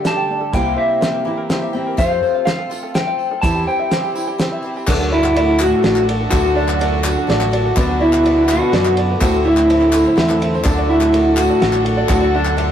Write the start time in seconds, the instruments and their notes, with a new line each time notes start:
Already playing: steel-string acoustic guitar G2 D3 A3 D4, five-string banjo G4 A4
0.04 twelve-string acoustic guitar G3 A3 D4 G4, steel-string acoustic guitar A4, five-string banjo D5, clean electric guitar A5, snare, closed hi-hat
0.17 five-string banjo G5
0.30 steel-string acoustic guitar D4
0.41 five-string banjo A4
0.53 fingered electric bass C2, steel-string acoustic guitar C3 A#3 C4 E4, twelve-string acoustic guitar C3 G3 A#3 E4, five-string banjo E4, clean electric guitar G5, kick, closed hi-hat
0.57 twelve-string acoustic guitar G4
0.65 five-string banjo A#4
0.76 five-string banjo C5, clean electric guitar E5
0.89 five-string banjo E5
1.01 twelve-string acoustic guitar G3 A#3 E4 G4, steel-string acoustic guitar C4, five-string banjo C5, snare, closed hi-hat
1.13 five-string banjo A#4
1.25 steel-string acoustic guitar E3, twelve-string acoustic guitar A#3 E4 G4, five-string banjo E4
1.37 five-string banjo A#4
1.49 twelve-string acoustic guitar G3 A#3 E4 G4, steel-string acoustic guitar E4, five-string banjo C5, snare, closed hi-hat
1.62 five-string banjo E5
1.73 twelve-string acoustic guitar A#3 E4 G4, steel-string acoustic guitar C4
1.87 five-string banjo A#4
1.97 twelve-string acoustic guitar F2 C3 F3 A3 C4 F4, fingered electric bass F2, five-string banjo F4, clean electric guitar F5, kick, closed hi-hat, tambourine
2.11 five-string banjo A4
2.23 five-string banjo C5, tambourine
2.35 five-string banjo F5
2.45 twelve-string acoustic guitar F3 A3 C4 F4, five-string banjo C5, clean electric guitar F5, snare, closed hi-hat, tambourine
2.59 five-string banjo A4
2.70 twelve-string acoustic guitar F3 A3 C4 F4, five-string banjo F4, tambourine
2.83 five-string banjo A4
2.94 twelve-string acoustic guitar F3 A3 C4 F4, five-string banjo C5, clean electric guitar G5, snare, closed hi-hat
3.07 five-string banjo F5
3.19 tambourine
3.31 five-string banjo A4
3.42 fingered electric bass E2, twelve-string acoustic guitar E3 G3 C4 E4, five-string banjo E4, clean electric guitar A5, kick, closed hi-hat, tambourine
3.55 five-string banjo G4, tambourine
3.67 five-string banjo C5, clean electric guitar G5, tambourine
3.79 five-string banjo E5
3.91 twelve-string acoustic guitar E3 G3 C4 E4, five-string banjo C5, snare, closed hi-hat
4.03 five-string banjo G4, tambourine
4.15 five-string banjo E4, tambourine
4.27 five-string banjo G4, tambourine
4.38 twelve-string acoustic guitar E3 G3 C4 E4, five-string banjo C5, snare, closed hi-hat, tambourine
4.52 five-string banjo E5
4.62 twelve-string acoustic guitar G3 C4 E4
4.76 five-string banjo G4, tambourine
4.87 upright piano D2 D3 F#3 A3 D4 A4 D5, fingered electric bass D2, cello F#2, string section D3 D4 F#4 A4, twelve-string acoustic guitar D3 A3 D4 F#4, clean electric guitar D4, five-string banjo F#4, kick, clap, crash, tambourine
5.00 five-string banjo A4
5.12 cello G2, clean electric guitar E4, five-string banjo D5, tambourine
5.24 five-string banjo F#5, clap
5.34 cello A2, twelve-string acoustic guitar D3 A3 D4 F#4, upright piano F#3 A3 D4 A4 E5, clean electric guitar E4, five-string banjo D5, ride
5.59 cello A2, clean electric guitar F#4, five-string banjo F#4, clap, tambourine
5.72 five-string banjo A4
5.83 fingered electric bass A1, twelve-string acoustic guitar D3 A3 D4 F#4, upright piano F#3 A3 D4 A4 D5, five-string banjo D5, snare, ride
5.96 five-string banjo F#5, clap
6.09 five-string banjo D5, ride
6.21 five-string banjo A4
6.30 upright piano D2 D3 F#3 A3 D4 A4 D5, fingered electric bass D2, cello A2, twelve-string acoustic guitar D3 A3 D4 F#4, clean electric guitar F#4, five-string banjo F#4, kick, clap, ride, tambourine
6.45 five-string banjo A4
6.55 cello F#2, clean electric guitar D4, five-string banjo D5, tambourine
6.68 five-string banjo F#5, clap
6.79 twelve-string acoustic guitar D3 A3 D4 F#4, upright piano F#3 A3 D4 A4 D5, five-string banjo D5, ride
7.03 twelve-string acoustic guitar A3 D4 F#4, five-string banjo F#4, clap, tambourine
7.18 five-string banjo A4
7.27 fingered electric bass A1, twelve-string acoustic guitar D3 A3 D4 F#4, upright piano F#3 A3 D4 A4 D5, five-string banjo D5, snare, ride
7.41 five-string banjo F#5, clap
7.51 twelve-string acoustic guitar A3 D4 F#4, five-string banjo D5, ride
7.65 five-string banjo A4
7.76 upright piano D2 D3 F#3 B3 D4 B4 D5, fingered electric bass D2, cello F#2, twelve-string acoustic guitar D3 B3 D4 F#4, string section D4 B4, clean electric guitar D4, five-string banjo F#4, kick, clap, ride, tambourine
7.89 five-string banjo B4
8.00 cello B2, clean electric guitar E4, five-string banjo D5, tambourine
8.13 five-string banjo F#5, clap
8.23 twelve-string acoustic guitar D3 B3 D4 F#4, upright piano F#3 B3 D4 B4 D5, five-string banjo D5, ride
8.48 cello B2, twelve-string acoustic guitar B3 D4 F#4, five-string banjo F#4, clean electric guitar F#4, clap, tambourine
8.62 five-string banjo B4
8.72 fingered electric bass F#2, twelve-string acoustic guitar D3 B3 D4 F#4, upright piano F#3 B3 D4 B4 D5, five-string banjo D5, snare, ride
8.85 five-string banjo F#5, clap
8.97 five-string banjo D5, ride
9.11 five-string banjo B4
9.20 fingered electric bass D2, upright piano D2 D3 A3 C4 E4 C5 E5, cello A2, twelve-string acoustic guitar D3 A3 C4 E4, string section A3 C4 E4, clean electric guitar F#4, five-string banjo A4, kick, clap, ride, tambourine
9.33 five-string banjo C5, tambourine
9.45 cello A2, clean electric guitar E4, five-string banjo E5, clap, tambourine
9.57 five-string banjo A5, clap
9.68 twelve-string acoustic guitar D3 A3 C4 E4, upright piano A3 C4 E4 C5 E5, five-string banjo E5, ride
9.81 clap
9.91 twelve-string acoustic guitar A3 C4 E4, clap, tambourine
9.95 five-string banjo A4
10.05 five-string banjo C5, clap
10.16 fingered electric bass E2, twelve-string acoustic guitar D3 A3 C4 E4, upright piano A3 C4 E4 C5 E5, five-string banjo E5, snare, clap, ride
10.29 five-string banjo A5, clap
10.40 twelve-string acoustic guitar A3 C4 E4, five-string banjo E5, ride
10.53 five-string banjo C5, tambourine
10.64 upright piano D2 D3 F#3 A3 D4 A4 D5, fingered electric bass D2, cello F#2, twelve-string acoustic guitar D3 A3 D4 F#4, clean electric guitar D4, string section D4 F#4 A4, five-string banjo A4, kick, clap, ride, tambourine
10.78 five-string banjo D5
10.88 cello A2, clean electric guitar E4, five-string banjo F#5, tambourine
11.01 five-string banjo A5, clap
11.12 twelve-string acoustic guitar D3 A3 D4 F#4, upright piano F#3 A3 D4 A4 D5, five-string banjo F#5, ride
11.37 cello A2, twelve-string acoustic guitar A3 D4 F#4, clean electric guitar F#4, five-string banjo A4, clap, tambourine
11.50 five-string banjo D5
11.60 fingered electric bass A1, twelve-string acoustic guitar D3 A3 D4 F#4, upright piano F#3 A3 D4 A4 D5, five-string banjo F#5, snare, ride
11.73 five-string banjo A5, clap
11.85 twelve-string acoustic guitar A3 D4 F#4, five-string banjo F#5, ride
11.97 five-string banjo D5
12.08 upright piano D2 D3 F#3 A3 D4 A4 D5, fingered electric bass D2, cello A2, twelve-string acoustic guitar D3 A3 D4 F#4, clean electric guitar F#4, five-string banjo A4, kick, clap, ride, tambourine
12.21 five-string banjo D5
12.34 cello F#2, clean electric guitar D4, five-string banjo F#5, tambourine
12.45 five-string banjo A5, clap
12.57 twelve-string acoustic guitar D3 A3 D4 F#4, upright piano F#3 A3 D4 A4 D5, five-string banjo F#5, ride